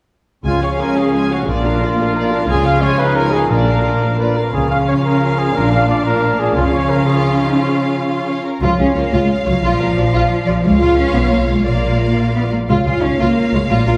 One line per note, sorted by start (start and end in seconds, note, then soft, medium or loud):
0.45 0.78 C#2 soft
0.45 1.44 C#3 soft
0.45 2.45 F3 soft
0.45 0.62 G#3 soft
0.45 1.44 C#4 soft
0.45 0.61 F4 soft
0.45 0.62 F4 medium
0.45 0.62 G#5 soft
0.63 0.80 C#4 soft
0.63 0.80 G#4 soft
0.63 0.71 C#5 soft
0.63 0.80 F5 soft
0.80 0.97 G#3 soft
0.80 0.97 F4 soft
0.80 0.99 A#4 soft
0.80 0.97 G#5 soft
0.97 1.14 C#4 soft
0.97 1.14 G#4 soft
0.97 1.31 G#4 soft
0.97 1.14 F5 soft
1.13 1.30 G#3 soft
1.13 1.30 F4 soft
1.13 1.30 G#5 soft
1.31 1.48 C#4 soft
1.31 1.47 F#4 soft
1.31 1.48 G#4 soft
1.31 1.48 F5 soft
1.48 1.79 A#1 soft
1.48 2.49 A#2 soft
1.48 1.64 A#3 soft
1.48 2.49 D4 soft
1.48 1.97 D4 soft
1.48 2.47 F4 medium
1.48 1.64 F4 soft
1.48 1.64 D5 soft
1.65 1.82 D4 soft
1.65 1.82 A#4 soft
1.65 1.82 F5 soft
1.81 1.98 A#3 soft
1.81 1.98 F4 soft
1.81 2.00 D5 soft
1.99 2.15 D4 soft
1.99 2.16 D4 soft
1.99 2.16 A#4 soft
1.99 2.16 F5 soft
2.15 2.31 A#3 soft
2.15 2.32 D#4 soft
2.15 2.31 F4 soft
2.15 2.32 D5 soft
2.31 2.48 D4 soft
2.31 2.49 A#4 soft
2.31 2.50 F5 soft
2.48 2.80 C#2 soft
2.48 3.49 C#3 soft
2.48 3.96 F3 soft
2.48 2.64 G#3 soft
2.48 3.49 C#4 soft
2.48 2.64 F4 soft
2.48 2.98 F4 medium
2.48 2.65 G#4 medium
2.48 2.65 G#5 soft
2.64 2.82 C#4 soft
2.64 2.82 G#4 soft
2.64 2.83 F5 soft
2.64 2.84 F5 medium
2.81 2.99 G#3 soft
2.81 2.99 F4 soft
2.81 3.01 C#5 medium
2.81 3.00 G#5 soft
2.98 3.16 C#4 soft
2.98 3.51 D#4 medium
2.98 3.16 G#4 soft
2.98 3.17 B4 medium
2.98 3.17 F5 soft
3.16 3.32 G#3 soft
3.16 3.32 F4 soft
3.16 3.35 A#4 medium
3.16 3.33 G#5 soft
3.32 3.50 C#4 soft
3.32 3.50 G#4 soft
3.32 3.52 G#4 medium
3.32 3.52 F5 soft
3.50 3.83 A#1 soft
3.50 4.35 A#2 soft
3.50 3.67 A#3 soft
3.50 4.27 D4 soft
3.50 3.99 D4 soft
3.50 3.67 F4 soft
3.50 4.18 A#4 medium
3.50 3.67 D5 soft
3.67 3.85 D4 soft
3.67 3.85 A#4 soft
3.67 3.86 F5 soft
3.85 4.02 A#3 soft
3.85 4.02 F4 soft
3.85 4.03 D5 soft
4.01 4.18 F3 soft
4.01 4.19 D4 soft
4.01 4.19 A#4 soft
4.01 4.20 F5 soft
4.19 4.35 A#3 soft
4.19 4.36 D4 soft
4.19 4.35 F4 soft
4.19 4.38 B4 soft
4.19 4.36 D5 soft
4.35 4.53 A#3 soft
4.35 4.53 D4 soft
4.35 4.53 A#4 soft
4.35 4.52 F5 soft
4.53 4.86 C#2 soft
4.53 5.52 C#3 soft
4.53 6.52 F3 soft
4.53 5.51 C#4 soft
4.53 5.52 C#4 soft
4.53 6.52 F4 soft
4.53 4.70 G#4 medium
4.53 6.52 F5 soft
4.70 4.78 F5 medium
4.87 4.95 C#5 soft
5.05 5.40 A#4 medium
5.39 5.55 G#4 medium
5.55 5.87 A#1 soft
5.55 6.54 A#2 soft
5.55 6.56 D4 soft
5.55 6.04 D4 medium
5.55 6.57 D4 soft
5.55 5.71 A#4 medium
5.72 5.88 F5 medium
5.89 6.05 D5 medium
6.05 6.55 D4 medium
6.05 6.41 A#4 medium
6.39 6.56 G#4 medium
6.56 6.87 C#2 soft
6.56 8.45 C#3 medium
6.56 8.42 F3 medium
6.56 8.41 C#4 soft
6.56 7.07 C#4 medium
6.56 8.42 C#4 medium
6.56 8.41 F4 soft
6.56 6.64 F4 medium
6.56 8.41 F5 soft
6.73 6.91 C#5 medium
6.90 7.08 A#4 medium
7.07 7.58 F4 soft
7.07 7.41 G#4 soft
7.41 7.60 D#4 soft
7.59 8.11 C#4 soft
7.59 8.07 F4 soft
8.10 8.27 F4 soft
8.27 8.45 C#5 soft
8.45 8.62 A#4 soft
8.62 8.69 C#2 soft
8.62 8.69 F3 medium
8.62 8.76 F4 soft
8.62 8.78 F4 soft
8.62 10.61 F4 soft
8.62 9.60 C#5 soft
8.62 10.61 F5 soft
8.77 8.86 C#2 soft
8.77 8.96 C#4 medium
8.77 8.84 F4 soft
8.77 8.86 G#4 soft
8.95 9.03 C#2 soft
8.95 9.13 A#3 medium
8.95 9.02 F4 soft
8.95 9.02 C#5 soft
9.13 9.20 C#2 soft
9.13 9.47 G#3 soft
9.13 9.29 F4 soft
9.46 9.54 C#2 soft
9.46 9.64 F#3 medium
9.46 9.53 F4 soft
9.46 9.53 C#5 soft
9.63 9.70 A#1 medium
9.63 10.62 F3 medium
9.63 9.79 F4 medium
9.63 9.79 F4 soft
9.63 10.65 D5 soft
9.80 9.88 A#1 soft
9.80 9.87 F4 soft
9.80 9.87 A#4 soft
9.97 10.04 A#1 soft
9.97 10.04 F4 soft
9.97 10.04 D5 soft
10.13 10.21 A#1 medium
10.13 10.29 F4 medium
10.13 10.30 F4 medium
10.46 10.54 A#1 soft
10.46 10.54 F4 soft
10.46 10.53 D5 soft
10.64 11.11 C#2 medium
10.64 10.81 G#3 medium
10.64 11.62 F4 soft
10.64 12.49 F4 medium
10.64 11.63 C#5 medium
10.64 11.65 C#5 soft
10.64 11.63 F5 medium
10.81 10.98 F4 medium
10.98 11.15 C#4 medium
11.15 11.65 B1 soft
11.15 11.32 B3 medium
11.32 11.39 A#3 medium
11.49 11.66 G#3 medium
11.66 12.52 A#1 soft
11.66 12.34 A#3 medium
11.66 12.51 F4 soft
11.66 12.52 D5 soft
11.66 12.51 F5 soft
12.35 12.42 B3 soft
12.52 12.59 A#3 soft
12.69 12.76 C#2 soft
12.69 12.76 G#3 medium
12.69 12.85 F4 soft
12.69 13.67 F4 soft
12.69 12.85 F4 soft
12.69 13.67 C#5 soft
12.69 13.97 F5 soft
12.86 12.93 C#2 soft
12.86 13.03 F4 medium
12.86 12.93 F4 soft
12.86 12.94 G#4 soft
13.02 13.09 C#2 soft
13.02 13.20 C#4 medium
13.02 13.10 F4 soft
13.02 13.09 C#5 soft
13.19 13.26 C#2 medium
13.19 13.53 A#3 medium
13.19 13.35 F4 soft
13.19 13.36 F4 soft
13.53 13.60 C#2 soft
13.53 13.71 G#3 medium
13.53 13.60 F4 soft
13.53 13.60 C#5 soft
13.69 13.77 A#1 medium
13.69 13.88 A#3 medium
13.69 13.86 F4 medium
13.69 13.86 F4 soft
13.69 13.97 F4 soft
13.69 13.97 D5 soft
13.87 13.93 A#1 soft
13.87 13.94 F4 soft
13.87 13.94 F4 medium
13.87 13.94 A#4 soft